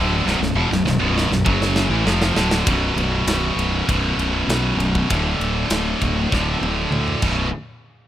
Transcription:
0.00 0.24 D1 loud
0.00 0.25 D2 medium
0.00 0.25 A2 medium
0.00 0.25 D3 medium
0.25 0.39 B0 medium
0.25 0.39 B1 medium
0.25 0.40 F#2 loud
0.25 snare medium
0.40 0.54 B0 medium
0.40 0.55 B1 medium
0.40 0.55 F#2 medium
0.40 snare medium
0.55 0.70 E1 loud
0.55 0.70 E2 medium
0.55 0.70 B2 loud
0.71 0.85 B0 medium
0.71 0.84 B1 medium
0.71 0.85 F#2 medium
0.71 snare medium
0.85 1.00 B0 medium
0.85 0.98 B1 medium
0.85 0.99 F#2 medium
0.85 snare medium
1.00 1.29 B0 loud
1.00 1.29 B1 medium
1.00 1.30 F#2 medium
1.00 1.30 B2 loud
1.18 snare medium
1.30 1.44 B0 medium
1.30 1.44 B1 medium
1.30 1.43 F#2 medium
1.30 snare medium
1.45 1.88 F#1 loud
1.45 1.90 F#2 medium
1.45 1.90 C#3 medium
1.45 1.90 F#3 loud
1.45 kick loud
1.62 snare medium
1.76 snare loud
1.90 2.04 A1 loud
1.90 2.05 A2 loud
1.90 2.05 E3 loud
2.05 2.34 F1 medium
2.05 2.35 F2 loud
2.05 2.35 C3 loud
2.05 2.36 F3 loud
2.05 snare loud
2.22 snare loud
2.35 2.64 D1 medium
2.35 2.65 D2 medium
2.35 2.65 A2 medium
2.35 2.66 D3 medium
2.35 snare loud
2.51 snare loud
2.65 2.91 B0 loud
2.65 3.85 B1 medium
2.65 3.86 F#2 medium
2.65 3.86 B2 loud
2.65 kick loud
2.65 ride loud
2.96 3.21 B0 medium
2.96 ride medium
3.25 3.50 B0 medium
3.25 snare loud
3.25 ride medium
3.56 3.81 B0 medium
3.56 ride medium
3.87 4.13 B0 medium
3.87 5.07 B1 medium
3.87 5.07 F#2 medium
3.87 5.08 B2 medium
3.87 kick loud
3.87 ride medium
4.17 4.42 B0 medium
4.17 ride medium
4.48 4.72 B1 medium
4.48 snare loud
4.48 ride medium
4.77 5.02 B0 medium
4.77 ride medium
4.95 kick medium
5.09 5.34 D1 medium
5.09 6.29 D2 medium
5.09 6.29 A2 loud
5.09 6.29 D3 medium
5.09 kick loud
5.09 ride medium
5.39 5.64 D1 medium
5.39 ride medium
5.70 5.94 D1 medium
5.70 snare loud
5.70 ride medium
6.01 6.25 D1 medium
6.01 kick medium
6.01 ride medium
6.30 6.56 D1 medium
6.30 7.21 D2 medium
6.30 7.22 A2 medium
6.30 7.22 D3 medium
6.30 kick loud
6.30 snare medium
6.61 6.85 D1 medium
6.61 high tom medium
6.91 7.15 D2 medium
6.91 mid tom medium
7.08 mid tom medium
7.22 7.50 B0 medium
7.22 7.46 B1 medium
7.22 7.46 F#2 medium
7.22 7.46 B2 medium
7.22 kick loud
7.22 crash medium

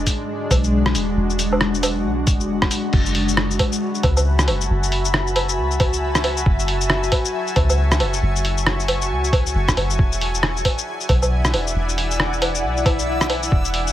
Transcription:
0.00 2.90 G#3 medium
0.00 2.90 D4 medium
0.00 2.90 F#4 medium
0.07 kick medium
0.07 open hi-hat medium
0.07 shaker medium
0.51 0.96 B1 medium
0.51 kick loud
0.51 open hi-hat medium
0.51 low woodblock medium
0.51 shaker medium
0.64 shaker soft
0.86 cross-stick loud
0.95 1.15 E1 loud
0.95 open hi-hat medium
0.95 shaker medium
1.17 2.06 E1 loud
1.30 shaker soft
1.39 open hi-hat medium
1.39 shaker medium
1.53 low woodblock medium
1.61 cross-stick loud
1.74 shaker soft
1.83 open hi-hat medium
1.83 low woodblock medium
1.83 shaker medium
2.05 2.29 B1 medium
2.27 2.42 F#1 medium
2.27 kick loud
2.27 open hi-hat medium
2.27 shaker medium
2.40 2.70 E1 loud
2.40 shaker soft
2.62 kick medium
2.62 cross-stick loud
2.71 open hi-hat medium
2.71 shaker medium
2.93 3.58 F#1 loud
2.93 9.95 F#4 medium
2.93 9.95 E5 medium
2.93 13.92 G#5 medium
2.93 9.95 A5 medium
2.93 6.43 B5 medium
2.93 kick loud
2.93 crash loud
3.06 shaker soft
3.15 open hi-hat medium
3.29 shaker medium
3.37 cross-stick loud
3.51 shaker soft
3.59 kick medium
3.59 open hi-hat medium
3.59 low woodblock medium
3.72 shaker medium
3.95 shaker soft
4.03 4.50 C#2 medium
4.03 kick loud
4.03 open hi-hat medium
4.03 low woodblock medium
4.17 low woodblock medium
4.17 shaker medium
4.39 cross-stick loud
4.39 shaker soft
4.48 4.69 F#1 loud
4.48 open hi-hat medium
4.48 low woodblock medium
4.61 shaker medium
4.70 5.60 F#1 loud
4.83 shaker soft
4.92 open hi-hat medium
5.05 shaker medium
5.14 cross-stick loud
5.27 shaker soft
5.36 open hi-hat medium
5.36 low woodblock medium
5.49 shaker medium
5.58 6.45 C#2 medium
5.71 shaker soft
5.80 kick loud
5.80 open hi-hat medium
5.80 low woodblock medium
5.93 shaker medium
6.15 cross-stick loud
6.15 shaker soft
6.24 open hi-hat medium
6.24 low woodblock medium
6.37 shaker medium
6.46 7.11 F#1 loud
6.46 9.96 C#6 medium
6.46 kick loud
6.59 shaker soft
6.68 open hi-hat medium
6.81 shaker medium
6.90 cross-stick loud
7.03 shaker soft
7.12 kick medium
7.12 open hi-hat medium
7.12 low woodblock medium
7.25 shaker medium
7.47 shaker soft
7.56 8.02 C#2 medium
7.56 kick loud
7.56 open hi-hat medium
7.56 low woodblock medium
7.70 low woodblock medium
7.70 shaker medium
7.92 cross-stick loud
7.92 shaker soft
8.00 8.21 F#1 medium
8.00 open hi-hat medium
8.00 low woodblock medium
8.13 shaker medium
8.22 9.12 F#1 loud
8.36 shaker soft
8.45 open hi-hat medium
8.58 shaker medium
8.67 cross-stick loud
8.80 shaker soft
8.88 open hi-hat medium
8.88 low woodblock medium
9.02 shaker medium
9.11 9.54 C#2 medium
9.24 shaker soft
9.33 kick loud
9.33 open hi-hat medium
9.33 low woodblock medium
9.46 shaker medium
9.55 9.76 F#1 medium
9.68 kick medium
9.68 cross-stick loud
9.68 shaker soft
9.77 9.98 F#1 medium
9.77 open hi-hat medium
9.77 low woodblock medium
9.90 shaker medium
9.99 10.64 E1 loud
9.99 13.92 E4 medium
9.99 13.92 D5 medium
9.99 13.92 E5 medium
9.99 13.92 F#5 medium
9.99 kick loud
10.12 shaker soft
10.21 open hi-hat medium
10.35 shaker medium
10.43 cross-stick loud
10.57 shaker soft
10.65 kick medium
10.65 open hi-hat medium
10.65 low woodblock medium
10.78 shaker medium
11.00 shaker soft
11.09 11.55 B1 medium
11.09 kick loud
11.09 open hi-hat medium
11.09 low woodblock medium
11.22 low woodblock soft
11.22 shaker medium
11.45 cross-stick loud
11.45 shaker soft
11.54 11.74 E1 loud
11.54 open hi-hat medium
11.54 low woodblock medium
11.67 shaker medium
11.75 12.65 E1 loud
11.89 shaker soft
11.98 open hi-hat medium
12.11 shaker medium
12.20 cross-stick loud
12.33 shaker soft
12.42 open hi-hat medium
12.42 low woodblock medium
12.55 shaker medium
12.63 13.51 B1 medium
12.77 shaker soft
12.86 kick loud
12.86 open hi-hat medium
12.86 low woodblock medium
12.99 shaker medium
13.21 cross-stick loud
13.21 shaker soft
13.30 open hi-hat medium
13.30 low woodblock medium
13.43 shaker medium
13.52 13.92 E1 loud
13.52 kick loud
13.65 shaker soft
13.74 open hi-hat medium
13.87 shaker medium

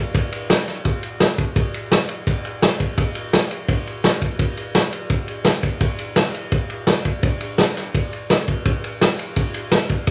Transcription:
0.15 kick loud
0.15 ride medium
0.32 ride medium
0.50 snare loud
0.50 ride loud
0.68 snare soft
0.68 ride medium
0.85 kick loud
0.85 ride medium
1.03 ride medium
1.20 snare loud
1.20 ride medium
1.38 kick medium
1.38 ride medium
1.56 kick loud
1.56 ride medium
1.74 ride medium
1.92 snare loud
1.92 ride medium
2.09 ride medium
2.27 kick loud
2.27 ride medium
2.45 ride medium
2.62 snare loud
2.62 ride medium
2.80 kick medium
2.80 ride medium
2.98 kick loud
2.98 ride loud
3.15 ride medium
3.33 snare loud
3.33 ride medium
3.51 ride medium
3.69 kick loud
3.69 ride medium
3.87 ride medium
4.04 snare loud
4.04 ride medium
4.22 kick medium
4.22 ride medium
4.39 kick loud
4.39 ride medium
4.57 ride medium
4.75 snare loud
4.75 ride medium
4.93 ride medium
5.10 kick loud
5.10 ride medium
5.28 ride medium
5.45 snare loud
5.45 ride medium
5.63 kick medium
5.63 ride medium
5.81 kick loud
5.81 ride medium
5.99 ride medium
6.16 snare loud
6.16 ride loud
6.34 ride medium
6.52 kick loud
6.52 ride medium
6.70 ride medium
6.87 snare loud
6.87 ride medium
7.05 kick medium
7.05 ride medium
7.23 kick loud
7.23 ride medium
7.41 ride medium
7.58 snare loud
7.58 ride loud
7.77 snare soft
7.77 ride medium
7.94 kick loud
7.94 ride medium
8.13 ride medium
8.30 snare loud
8.30 ride medium
8.48 kick medium
8.48 ride medium
8.65 kick loud
8.65 ride medium
8.84 ride medium
9.01 snare loud
9.01 ride loud
9.19 ride medium
9.36 kick loud
9.36 ride medium
9.54 ride medium
9.71 snare loud
9.71 ride medium
9.89 kick medium
9.89 ride medium
10.07 kick loud
10.07 ride medium

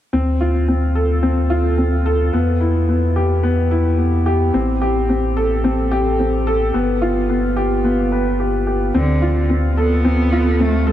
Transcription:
0.13 2.31 D2 medium
0.13 0.40 C4 medium
0.41 0.67 F4 medium
0.68 0.84 C4 medium
0.95 1.11 A4 medium
1.23 1.49 C4 medium
1.50 1.77 F4 medium
1.78 2.05 C4 medium
2.06 2.32 A4 medium
2.33 4.51 E2 medium
2.33 2.60 B3 medium
2.61 2.87 E4 medium
2.89 3.04 B3 medium
3.16 3.32 G4 medium
3.43 3.70 B3 medium
3.71 3.97 E4 medium
3.99 4.25 B3 medium
4.26 4.52 G4 medium
4.54 6.72 A1 medium
4.54 4.80 C4 medium
4.82 5.08 G4 medium
5.09 5.25 C4 medium
5.37 5.52 A4 medium
5.64 5.90 C4 medium
5.91 6.18 G4 medium
6.19 6.45 C4 medium
6.47 6.73 A4 medium
6.74 8.92 G1 medium
6.74 7.00 B3 medium
7.02 7.28 F4 medium
7.30 7.45 B3 medium
7.57 7.72 G4 medium
7.84 8.11 B3 medium
8.12 8.38 B4 medium
8.40 8.55 G4 medium
8.67 8.93 G4 medium
8.95 10.92 D2 medium
8.95 9.46 D3 medium
8.95 9.21 C4 medium
9.22 9.48 F4 medium
9.50 9.65 C4 medium
9.77 10.63 B3 medium
9.77 9.93 A4 medium
10.05 10.31 C4 medium
10.32 10.58 F4 medium
10.60 10.90 A3 medium
10.60 10.86 C4 medium
10.87 10.92 G3 medium
10.87 10.92 A4 medium

